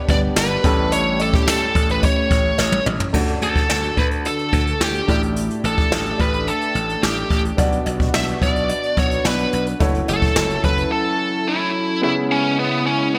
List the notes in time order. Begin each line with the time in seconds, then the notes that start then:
Already playing: G2 G3 B3 D4 G4 B4
0.08 G1 G3 B3 D4 B4 D5, kick, closed hi-hat
0.36 G1 B4, snare, closed hi-hat, tambourine, cowbell
0.63 A1 A2 G3 A3 C#4 E4 A4, kick, closed hi-hat
0.92 C#5, closed hi-hat, cowbell
1.20 A4, closed hi-hat, cowbell
1.34 G4, kick
1.48 A4, snare, closed hi-hat, tambourine, cowbell
1.75 A1, kick, closed hi-hat
1.89 B4, closed hi-hat
2.03 C#5, kick, closed hi-hat, cowbell
2.31 A1, kick, closed hi-hat
2.58 A1, snare, cowbell
2.72 high tom
2.86 A1, mid tom, cowbell
3.00 floor tom
3.13 D2 D3 A3 D4 F#4 A4 D5, kick, crash
3.28 closed hi-hat
3.42 D2 A4, closed hi-hat
3.56 kick, closed hi-hat
3.69 D2, snare
3.83 closed hi-hat
3.97 D2 B4, kick, closed hi-hat
4.11 closed hi-hat
4.25 A4, closed hi-hat
4.39 closed hi-hat
4.53 D2, kick, closed hi-hat
4.67 closed hi-hat
4.80 D2 G4, snare
4.95 closed hi-hat
5.07 A1 A2 A3 E4 G4 D5, kick, closed hi-hat
5.23 closed hi-hat
5.36 closed hi-hat
5.50 closed hi-hat
5.64 A1 A4, closed hi-hat
5.78 kick, closed hi-hat
5.92 A1, snare
6.06 closed hi-hat
6.20 A1 B4, kick, closed hi-hat
6.34 closed hi-hat
6.47 A4, closed hi-hat
6.61 closed hi-hat
6.75 A1, closed hi-hat
6.89 closed hi-hat
7.03 A1 G4, snare
7.17 closed hi-hat
7.30 A1, kick, closed hi-hat
7.45 closed hi-hat
7.57 B1 B2 B3 D4 F#4 D5, kick, closed hi-hat, cowbell
7.72 closed hi-hat
7.86 B1, closed hi-hat, cowbell
8.00 kick, closed hi-hat
8.14 B1 E5, snare, cowbell
8.28 closed hi-hat
8.42 B1 D5, kick, closed hi-hat
8.56 closed hi-hat
8.69 closed hi-hat, cowbell
8.83 closed hi-hat
8.97 B1 C#5, kick, closed hi-hat
9.11 closed hi-hat
9.24 B1 B3 D4 F#4 B4 D5, snare, cowbell
9.39 closed hi-hat
9.53 B1, closed hi-hat
9.67 closed hi-hat
9.80 F#1 F#3 A3 C#4 E4 F#4 A4 C#5, kick, closed hi-hat, cowbell
9.94 closed hi-hat
10.08 F#1 A4, closed hi-hat, cowbell
10.22 kick, closed hi-hat
10.36 F#1, snare, cowbell
10.50 closed hi-hat
10.64 F#1 B4, kick, closed hi-hat
10.78 closed hi-hat
10.92 A4
11.48 E4
12.02 C#3 G#3 B3 C#4 E4 G#4 C#5
12.32 C#4
12.59 B3
12.87 C#4
13.15 B3